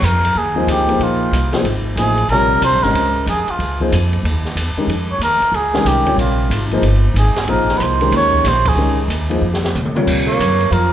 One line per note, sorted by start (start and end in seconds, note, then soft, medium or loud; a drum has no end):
0.02 0.34 F2 medium
0.02 0.39 A#4 loud
0.02 hi-hat pedal medium
0.02 ride medium
0.25 ride medium
0.35 0.66 D#2 medium
0.35 0.69 G#4 medium
0.56 0.86 F3 medium
0.56 0.86 A#3 medium
0.56 0.86 D#4 medium
0.56 0.87 G#4 medium
0.56 0.87 C5 medium
0.67 0.98 C#2 medium
0.67 hi-hat pedal medium
0.67 ride medium
0.71 1.05 G4 medium
0.88 1.30 F3 medium
0.88 1.31 A#3 medium
0.88 1.31 D#4 medium
0.88 1.31 G#4 medium
0.88 1.31 C5 medium
0.88 ride soft
0.99 1.31 A#1 medium
0.99 ride medium
1.03 1.55 F4 medium
1.31 1.63 C2 medium
1.31 hi-hat pedal medium
1.31 ride medium
1.53 1.64 F3 medium
1.53 1.64 A#3 medium
1.53 1.65 D#4 medium
1.53 1.65 G#4 medium
1.53 1.65 C5 medium
1.53 snare medium
1.53 ride soft
1.64 1.95 G#1 medium
1.64 ride medium
1.96 2.27 A1 medium
1.96 2.16 F3 soft
1.96 2.16 A#3 soft
1.96 2.16 D#4 soft
1.96 2.28 G#4 medium
1.96 2.16 G#4 soft
1.96 2.17 C5 soft
1.96 hi-hat pedal medium
1.96 ride medium
2.18 ride soft
2.28 2.60 A#1 medium
2.28 2.79 C3 medium
2.28 2.79 G3 medium
2.28 2.79 F4 medium
2.28 2.60 A#4 loud
2.28 2.79 A#4 medium
2.28 ride medium
2.32 2.80 C#5 medium
2.61 2.72 C2 medium
2.61 2.85 C5 loud
2.61 hi-hat pedal medium
2.61 ride medium
2.72 2.83 A#1 medium
2.83 2.93 G#1 medium
2.83 3.25 G#3 medium
2.83 3.25 C#4 medium
2.83 3.25 G4 soft
2.83 3.27 A#4 medium
2.83 3.25 C5 soft
2.83 3.26 D#5 medium
2.83 snare soft
2.94 3.25 C#2 medium
2.94 ride medium
3.26 3.46 F2 medium
3.26 3.52 G#4 medium
3.26 hi-hat pedal medium
3.26 ride medium
3.48 3.81 F4 medium
3.48 muted upright bass stroke soft
3.48 ride soft
3.59 3.90 C#2 medium
3.59 ride medium
3.80 3.91 F3 medium
3.80 3.91 A#3 medium
3.80 3.91 D#4 medium
3.80 3.91 G#4 medium
3.80 3.91 C5 medium
3.80 kick soft
3.92 4.23 F2 medium
3.92 hi-hat pedal medium
3.92 ride medium
4.13 ride soft
4.23 4.55 D#2 medium
4.23 ride medium
4.45 snare soft
4.55 4.75 E2 medium
4.55 hi-hat pedal medium
4.55 ride medium
4.76 4.88 D#3 medium
4.76 4.88 G#3 medium
4.76 4.88 C#4 medium
4.76 4.88 G4 medium
4.76 4.88 A#4 medium
4.76 muted upright bass stroke soft
4.87 5.18 F2 medium
4.87 ride medium
5.12 5.22 C#5 medium
5.18 5.39 D#2 medium
5.18 hi-hat pedal medium
5.18 ride medium
5.24 5.57 A#4 medium
5.40 muted upright bass stroke soft
5.40 ride soft
5.52 5.84 C#2 medium
5.52 5.89 G#4 medium
5.52 ride medium
5.74 6.04 D#3 medium
5.74 6.04 G#3 medium
5.74 6.04 C#4 medium
5.74 6.05 G4 medium
5.74 6.05 A#4 medium
5.74 snare soft
5.85 6.15 C2 medium
5.85 6.19 G4 medium
5.85 hi-hat pedal medium
5.85 ride medium
6.06 6.48 C3 soft
6.06 6.48 G3 medium
6.06 6.48 F4 medium
6.06 6.48 A#4 medium
6.06 6.48 C#5 medium
6.06 kick medium
6.06 ride soft
6.16 6.48 A#1 medium
6.16 ride medium
6.20 6.68 F4 medium
6.50 6.81 G#1 medium
6.50 hi-hat pedal medium
6.50 ride medium
6.71 6.82 F3 medium
6.71 6.83 A#3 medium
6.71 6.83 D#4 medium
6.71 6.83 G#4 medium
6.71 6.83 C5 medium
6.71 ride soft
6.82 7.13 G1 medium
6.82 ride medium
7.14 7.34 G#1 medium
7.14 7.52 G#4 medium
7.14 hi-hat pedal soft
7.14 ride medium
7.36 muted upright bass stroke soft
7.36 snare soft
7.36 ride soft
7.47 7.79 A#1 medium
7.47 7.97 F3 medium
7.47 7.97 A#3 medium
7.47 7.97 D#4 medium
7.47 7.97 G#4 medium
7.47 7.79 A#4 medium
7.47 7.97 C5 medium
7.47 ride medium
7.68 snare soft
7.78 8.11 C2 medium
7.78 7.84 B4 medium
7.78 hi-hat pedal medium
7.78 ride medium
7.83 8.14 C5 medium
8.01 8.43 D#3 medium
8.01 8.43 G#3 medium
8.01 8.43 C#4 medium
8.01 8.43 G4 medium
8.01 8.43 A#4 medium
8.01 ride soft
8.11 8.43 D#2 medium
8.11 ride medium
8.17 8.50 C#5 loud
8.33 kick medium
8.44 8.74 A#1 medium
8.44 snare soft
8.44 hi-hat pedal medium
8.44 ride medium
8.48 8.70 C5 loud
8.65 8.99 G#4 medium
8.65 kick medium
8.65 ride medium
8.75 9.07 C#2 medium
8.75 8.96 D#3 medium
8.75 8.96 G#3 medium
8.75 8.96 C#4 medium
8.75 8.96 G4 medium
8.75 8.96 A#4 medium
9.08 9.40 D#2 medium
9.08 hi-hat pedal medium
9.08 ride medium
9.30 9.41 F3 medium
9.30 9.41 A#3 medium
9.30 9.41 D#4 medium
9.30 9.41 G#4 medium
9.30 9.41 C5 medium
9.30 ride soft
9.41 9.73 F2 medium
9.53 snare soft
9.64 snare medium
9.75 10.06 C3 medium
9.75 hi-hat pedal medium
9.75 mid tom medium
9.85 mid tom medium
9.95 10.37 C3 medium
9.95 10.37 G3 medium
9.95 10.37 F4 medium
9.95 10.37 A#4 medium
9.95 10.38 C#5 medium
9.95 mid tom medium
10.07 10.39 A#2 medium
10.07 kick medium
10.07 crash medium
10.26 10.73 A#3 medium
10.26 10.74 C#5 medium
10.39 10.70 F#2 medium
10.39 hi-hat pedal medium
10.39 ride medium
10.61 ride soft
10.71 10.93 F2 medium
10.71 10.93 F3 medium
10.71 10.93 A#4 medium
10.71 ride medium